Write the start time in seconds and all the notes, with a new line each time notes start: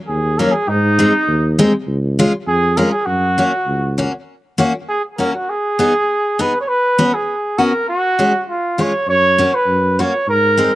0.08 D#2 G#4
0.39 F#3 A#3 C#4 A#4
0.51 G#4
0.68 G#2 D#4
0.99 G#3 C4 D#4
1.27 D#2
1.59 G#3 C4 D#4
1.87 C#2
2.19 G#3 C#4 F4
2.46 F2 G#4
2.77 G#3 C#4 F4 A#4
2.91 G#4
3.06 F#2 F#4
3.38 A#3 C#4 F#4
3.66 C#2
3.98 A#3 C#4 F#4
4.58 A#3 C#4 F#4
4.89 G#4
5.18 A#3 C#4 F#4 A#4
5.34 F#4
5.49 G#4
5.79 B3 D#4 G#4
6.39 B3 D#4 G#4 B4
6.61 C#5
6.68 B4
6.98 B3 C#4 F#4
7.14 G#4
7.58 B3 C#4 F#4 A#4
7.89 F#4
8.19 G#3 C#4 F#4
8.50 F4
8.78 G#3 C#4 F4 C#5
9.07 F#2 C#5
9.38 A#3 C#4 F#4
9.55 B4
9.66 F#2
9.99 A#3 C#4 F#4 C#5
10.27 G#2 A#4
10.57 G#3 C4 D#4